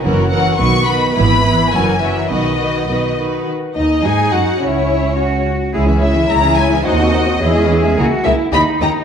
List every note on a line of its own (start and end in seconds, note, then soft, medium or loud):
0.04 0.50 F#1 medium
0.04 0.50 F#2 medium
0.04 0.30 E3 medium
0.04 0.30 C#4 medium
0.04 0.31 F#4 medium
0.04 0.31 A#4 medium
0.31 0.59 E3 soft
0.31 0.59 C#4 soft
0.31 0.59 F#4 soft
0.31 0.59 A#4 medium
0.31 0.57 F#5 medium
0.58 1.07 B1 medium
0.58 1.07 B2 medium
0.58 0.87 D#3 soft
0.58 0.86 B3 soft
0.58 0.87 F#4 soft
0.58 0.87 B4 soft
0.58 0.86 C#6 medium
0.86 1.16 D#3 soft
0.86 1.16 B3 soft
0.86 1.16 F#4 soft
0.86 1.15 B4 soft
0.86 1.14 B5 medium
1.15 1.64 G#1 medium
1.15 1.64 G#2 medium
1.15 1.44 E3 medium
1.15 1.44 B3 medium
1.15 1.43 E4 medium
1.15 1.43 B4 medium
1.15 1.72 B5 medium
1.44 1.73 E3 soft
1.44 1.73 B3 soft
1.44 1.73 E4 soft
1.44 1.73 B4 soft
1.73 2.22 F#1 medium
1.73 2.22 F#2 medium
1.73 2.01 E3 soft
1.73 2.01 C#4 soft
1.73 2.00 F#4 soft
1.73 2.00 A#4 soft
1.73 2.02 G#5 medium
2.01 2.31 E3 soft
2.01 2.31 C#4 soft
2.01 2.30 F#4 soft
2.01 2.31 A#4 soft
2.01 2.32 E5 medium
2.31 2.81 B1 medium
2.31 2.81 B2 medium
2.31 2.60 D#3 soft
2.31 2.60 D#4 soft
2.31 2.59 F#4 medium
2.31 2.59 B4 medium
2.31 3.18 D#5 medium
2.60 2.88 D#3 soft
2.60 2.89 D#4 soft
2.60 2.88 F#4 soft
2.60 2.88 B4 soft
2.89 3.40 B1 soft
2.89 3.39 B2 soft
2.89 3.18 D#3 soft
2.89 3.18 D#4 soft
2.89 3.18 F#4 soft
2.89 3.18 B4 soft
3.19 3.48 D#3 soft
3.19 3.48 D#4 soft
3.19 3.48 F#4 soft
3.19 3.48 B4 soft
3.77 4.03 D#2 medium
3.77 4.03 D#4 medium
3.77 4.04 D#5 medium
4.04 4.33 G#2 medium
4.04 4.57 D#4 soft
4.04 4.33 G#4 medium
4.04 4.34 G#5 medium
4.32 4.41 F#2 soft
4.32 4.61 F#4 soft
4.32 4.62 F#4 medium
4.32 4.61 F#5 medium
4.61 5.44 C#2 medium
4.61 5.44 C#4 soft
4.61 5.46 C#4 medium
4.61 5.16 E4 soft
4.61 5.46 C#5 medium
5.18 5.72 F#4 soft
5.73 6.23 C#2 medium
5.73 5.87 G#3 soft
5.73 5.87 E4 soft
5.73 5.81 G#4 medium
5.73 5.87 C#5 medium
5.87 6.01 E3 soft
5.87 6.01 C#4 soft
5.87 6.02 G#4 soft
5.87 6.02 E5 soft
6.00 6.15 G#3 soft
6.00 6.83 E4 medium
6.00 6.16 E4 soft
6.00 6.16 C#5 soft
6.00 6.28 E5 medium
6.16 6.30 E3 soft
6.16 6.30 C#4 soft
6.16 6.30 G#4 soft
6.16 6.29 E5 soft
6.29 6.79 C#2 medium
6.29 6.43 G#3 soft
6.29 6.42 E4 soft
6.29 6.43 E4 soft
6.29 6.43 C#5 medium
6.29 6.58 A#5 medium
6.44 6.58 E3 soft
6.44 6.58 C#4 soft
6.44 6.58 G#4 soft
6.44 6.58 E5 soft
6.58 6.71 G#3 soft
6.58 6.72 E4 soft
6.58 6.72 C#5 soft
6.58 6.85 G#5 medium
6.71 6.85 E3 soft
6.71 6.85 C#4 soft
6.71 6.86 G#4 soft
6.71 6.86 E5 soft
6.84 7.34 D#2 medium
6.84 6.98 D#4 medium
6.84 6.98 D#4 soft
6.84 7.41 F#4 medium
6.84 6.98 F#4 medium
6.84 6.98 C5 medium
6.84 7.68 D#5 medium
6.99 7.14 C4 soft
6.99 7.12 D#4 soft
6.99 7.13 F#4 soft
6.99 7.13 D#5 soft
7.13 7.26 D#4 soft
7.13 7.27 D#4 medium
7.13 7.27 F#4 soft
7.13 7.27 C5 soft
7.27 7.41 C4 soft
7.27 7.41 D#4 medium
7.27 7.41 F#4 soft
7.27 7.41 D#5 soft
7.40 7.90 E2 medium
7.40 7.54 E3 soft
7.40 7.54 E4 medium
7.40 7.96 G#4 medium
7.40 7.54 C#5 medium
7.55 7.69 G#3 soft
7.55 7.69 C#4 medium
7.55 7.69 G#4 soft
7.55 7.69 E5 soft
7.67 7.83 E3 medium
7.67 7.82 E4 medium
7.67 7.83 E4 medium
7.67 7.82 C#5 medium
7.83 7.97 G#3 soft
7.83 7.97 C#4 medium
7.83 7.96 G#4 soft
7.83 7.97 E5 soft
7.97 8.06 C#2 medium
7.97 8.05 A#3 medium
7.97 8.06 E4 medium
7.97 8.25 F#4 medium
7.97 8.05 G#4 medium
7.97 8.06 A#4 medium
8.24 8.33 C#2 medium
8.24 8.33 A#3 medium
8.24 8.33 E4 medium
8.24 8.53 E4 medium
8.24 8.33 G#4 medium
8.24 8.32 A#4 medium
8.24 8.34 E5 medium
8.52 8.61 D#2 medium
8.52 8.62 A#3 medium
8.52 8.62 D#4 medium
8.52 9.04 D#4 medium
8.52 8.60 G4 medium
8.52 8.61 D#5 medium
8.52 8.61 B5 medium
8.81 8.89 D#2 medium
8.81 8.89 A#3 medium
8.81 8.89 D#4 soft
8.81 8.90 G4 medium
8.81 8.90 D#5 medium
8.81 8.90 A#5 medium